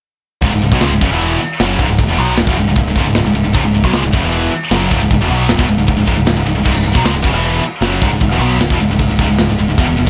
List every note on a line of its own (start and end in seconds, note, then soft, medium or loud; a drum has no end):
0.42 0.51 C#1 medium
0.42 0.52 C#2 medium
0.42 0.53 G#2 loud
0.42 kick loud
0.42 ride loud
0.53 0.60 C#1 medium
0.53 0.62 C#2 medium
0.53 0.63 G#2 medium
0.61 0.71 C#1 medium
0.61 0.72 C#2 medium
0.61 0.73 G#2 medium
0.61 ride medium
0.72 0.81 B1 medium
0.72 0.82 B2 medium
0.72 0.82 F#3 loud
0.72 kick loud
0.81 0.90 C#2 medium
0.81 0.92 C#3 medium
0.81 0.92 G#3 medium
0.81 snare loud
0.81 ride loud
0.90 1.00 C#1 medium
0.90 1.01 C#2 medium
0.90 1.02 G#2 medium
1.01 1.09 F#1 medium
1.01 1.10 F#2 medium
1.01 1.11 C#3 loud
1.01 kick loud
1.01 ride medium
1.10 1.37 E1 medium
1.10 1.39 E2 medium
1.10 1.40 B2 medium
1.10 1.40 E3 loud
1.21 ride loud
1.41 muted picked electric bass stroke soft
1.41 muted distorted electric guitar stroke medium
1.41 ride medium
1.60 1.78 F#1 medium
1.60 1.79 F#2 medium
1.60 1.79 C#3 medium
1.60 1.80 F#3 loud
1.60 snare loud
1.60 ride loud
1.79 1.87 C#1 loud
1.79 1.88 C#2 loud
1.79 1.89 G#2 loud
1.79 kick loud
1.79 ride medium
1.88 1.97 C#1 medium
1.88 1.99 C#2 medium
1.88 1.98 G#2 medium
1.98 2.07 C#1 medium
1.98 2.08 C#2 medium
1.98 2.09 G#2 medium
1.98 kick loud
1.98 ride loud
2.08 2.17 E1 medium
2.08 2.18 E2 medium
2.08 2.17 B2 loud
2.18 2.36 B1 medium
2.18 2.37 B2 medium
2.18 2.37 F#3 medium
2.18 2.38 B3 medium
2.18 ride medium
2.38 2.46 C#1 medium
2.38 2.48 C#2 medium
2.38 2.48 G#2 medium
2.38 snare loud
2.38 ride loud
2.47 2.56 E1 loud
2.47 2.57 E2 medium
2.47 2.58 B2 loud
2.47 kick loud
2.56 2.66 C#1 medium
2.56 2.67 C#2 medium
2.56 2.68 G#2 medium
2.56 ride medium
2.67 2.75 C#1 medium
2.67 2.77 C#2 medium
2.67 2.77 G#2 medium
2.76 2.84 C#1 medium
2.76 2.87 C#2 medium
2.76 2.87 G#2 medium
2.76 kick loud
2.76 ride loud
2.85 2.95 C#1 medium
2.85 2.97 C#2 medium
2.89 2.97 G#2 medium
2.95 3.04 C#1 loud
2.95 3.06 C#2 medium
2.95 3.07 G#2 medium
2.95 kick loud
2.95 ride medium
3.05 3.14 C#1 medium
3.05 3.16 C#2 medium
3.05 3.17 G#2 medium
3.15 3.24 C#1 medium
3.15 3.25 C#2 medium
3.15 3.25 G#2 medium
3.15 snare loud
3.15 ride medium
3.25 3.33 C#1 medium
3.25 3.33 C#2 medium
3.25 3.34 G#2 medium
3.34 3.43 C#1 medium
3.34 3.43 C#2 medium
3.34 3.43 G#2 medium
3.34 ride medium
3.44 3.54 C#1 medium
3.44 3.52 C#2 medium
3.44 3.53 G#2 medium
3.53 3.63 C#1 medium
3.53 3.63 C#2 medium
3.53 3.63 G#2 loud
3.53 kick loud
3.53 ride loud
3.64 3.73 C#1 medium
3.64 3.73 C#2 medium
3.64 3.74 G#2 medium
3.74 3.83 C#1 medium
3.74 3.83 C#2 medium
3.74 3.84 G#2 medium
3.74 ride medium
3.84 3.93 B1 medium
3.84 3.93 B2 loud
3.84 3.93 F#3 loud
3.84 kick loud
3.93 4.02 C#2 loud
3.93 4.03 C#3 loud
3.93 4.03 G#3 loud
3.93 snare loud
3.93 ride loud
4.03 4.12 C#1 medium
4.03 4.12 C#2 medium
4.03 4.13 G#2 medium
4.12 4.22 F#1 medium
4.12 4.21 F#2 medium
4.12 4.22 C#3 medium
4.12 kick loud
4.12 ride medium
4.21 4.50 E1 loud
4.21 4.50 E2 loud
4.21 4.51 B2 medium
4.21 4.52 E3 medium
4.32 ride loud
4.52 muted distorted electric guitar stroke medium
4.52 muted picked electric bass stroke soft
4.52 ride medium
4.71 4.89 F#1 medium
4.71 4.90 F#2 medium
4.71 4.90 C#3 medium
4.71 4.91 F#3 loud
4.71 snare loud
4.71 ride loud
4.91 5.00 C#1 medium
4.91 5.01 C#2 medium
4.91 5.01 G#2 loud
4.91 kick loud
4.91 ride medium
5.01 5.10 C#1 medium
5.01 5.10 C#2 medium
5.01 5.11 G#2 medium
5.10 5.19 C#1 medium
5.10 5.20 C#2 medium
5.10 5.21 G#2 medium
5.10 kick loud
5.10 ride loud
5.21 5.30 E1 medium
5.21 5.29 E2 medium
5.21 5.28 B2 loud
5.29 5.48 B1 medium
5.29 5.48 B2 medium
5.29 5.49 F#3 medium
5.29 5.49 B3 medium
5.29 ride medium
5.49 5.58 C#1 medium
5.49 5.58 C#2 medium
5.49 5.59 G#2 medium
5.49 snare loud
5.49 ride loud
5.58 5.67 E1 loud
5.58 5.68 E2 medium
5.58 5.68 B2 loud
5.58 kick loud
5.68 5.77 C#1 medium
5.68 5.77 C#2 medium
5.68 5.77 G#2 medium
5.68 ride medium
5.77 5.87 C#1 medium
5.77 5.86 C#2 medium
5.77 5.86 G#2 medium
5.87 5.97 C#1 medium
5.87 5.95 C#2 medium
5.87 5.96 G#2 medium
5.87 kick loud
5.87 ride loud
5.97 6.07 C#1 medium
5.97 6.04 C#2 medium
5.97 6.06 G#2 medium
6.05 6.17 C#1 medium
6.05 6.15 C#2 medium
6.05 6.15 G#2 loud
6.05 kick loud
6.05 ride medium
6.16 6.26 C#1 medium
6.16 6.25 C#2 medium
6.16 6.25 G#2 medium
6.26 6.36 C#1 medium
6.26 6.35 C#2 medium
6.26 6.35 G#2 medium
6.26 snare loud
6.26 ride loud
6.37 6.46 C#1 medium
6.37 6.45 C#2 medium
6.37 6.46 G#2 medium
6.46 6.56 C#1 medium
6.46 6.54 C#2 medium
6.46 6.54 G#2 medium
6.46 ride medium
6.55 6.65 C#1 medium
6.55 6.62 C#2 medium
6.55 6.63 G#2 medium
6.63 6.75 C#1 medium
6.63 6.72 C#2 medium
6.63 6.72 G#2 loud
6.63 kick loud
6.63 crash loud
6.73 6.85 C#1 medium
6.73 6.82 C#2 medium
6.73 6.82 G#2 medium
6.83 6.95 C#1 medium
6.83 6.91 C#2 medium
6.83 6.93 G#2 medium
6.83 ride medium
6.92 7.04 B1 medium
6.92 7.03 B2 medium
6.92 7.03 F#3 loud
6.92 kick loud
7.03 7.13 C#2 medium
7.03 7.13 C#3 medium
7.03 7.14 G#3 loud
7.03 snare loud
7.03 ride loud
7.13 7.23 C#1 medium
7.13 7.22 C#2 medium
7.13 7.23 G#2 medium
7.22 7.32 F#1 loud
7.22 7.32 F#2 medium
7.22 7.32 C#3 medium
7.22 kick loud
7.22 ride medium
7.32 7.61 E1 loud
7.32 7.61 E2 medium
7.32 7.62 B2 medium
7.32 7.63 E3 loud
7.43 ride loud
7.61 muted distorted electric guitar stroke medium
7.61 muted picked electric bass stroke soft
7.61 ride medium
7.81 8.00 F#1 medium
7.81 8.01 F#2 medium
7.81 8.02 C#3 medium
7.81 8.02 F#3 loud
7.81 snare loud
7.81 ride loud
8.01 8.10 C#1 loud
8.01 8.11 C#2 loud
8.01 8.11 G#2 loud
8.01 kick loud
8.01 ride medium
8.11 8.20 C#1 medium
8.11 8.20 C#2 medium
8.11 8.21 G#2 medium
8.21 8.28 C#1 medium
8.21 8.31 C#2 medium
8.21 8.32 G#2 medium
8.21 kick loud
8.21 ride loud
8.28 8.38 E1 medium
8.28 8.41 E2 loud
8.32 8.41 B2 medium
8.39 8.58 B1 loud
8.39 8.61 B2 medium
8.39 ride medium
8.43 8.61 F#3 medium
8.43 8.61 B3 medium
8.58 8.69 C#1 medium
8.58 8.71 C#2 medium
8.58 snare loud
8.58 ride loud
8.63 8.72 G#2 medium
8.70 8.79 E1 loud
8.70 8.81 E2 medium
8.70 8.81 B2 loud
8.70 kick loud
8.80 8.89 C#1 medium
8.80 8.90 C#2 medium
8.80 8.90 G#2 medium
8.80 ride medium
8.90 8.99 C#1 medium
8.90 9.00 C#2 medium
8.90 9.01 G#2 medium
8.99 9.09 C#1 medium
8.99 9.09 C#2 medium
8.99 9.10 G#2 medium
8.99 kick loud
8.99 ride loud
9.09 9.18 C#1 medium
9.09 9.19 C#2 medium
9.09 9.20 G#2 medium
9.19 9.28 C#1 loud
9.19 9.29 C#2 medium
9.19 9.29 G#2 loud
9.19 kick loud
9.19 ride medium
9.29 9.38 C#1 medium
9.29 9.38 C#2 medium
9.29 9.38 G#2 medium
9.39 9.48 C#1 medium
9.39 9.48 C#2 medium
9.39 9.49 G#2 medium
9.39 snare loud
9.39 ride loud
9.49 9.58 C#1 medium
9.49 9.58 C#2 medium
9.49 9.58 G#2 medium
9.58 9.67 C#1 medium
9.58 9.68 C#2 medium
9.58 9.69 G#2 medium
9.58 ride medium
9.69 9.77 C#1 medium
9.69 9.78 C#2 medium
9.69 9.78 G#2 medium
9.77 9.87 E1 loud
9.77 9.87 E2 loud
9.77 9.87 B2 loud
9.77 kick loud
9.77 ride loud
9.88 9.97 E1 medium
9.88 9.96 E2 medium
9.88 9.96 B2 medium
9.97 10.07 E1 medium
9.97 10.06 E2 medium
9.97 10.07 B2 medium
9.97 ride medium
10.06 10.10 D2 loud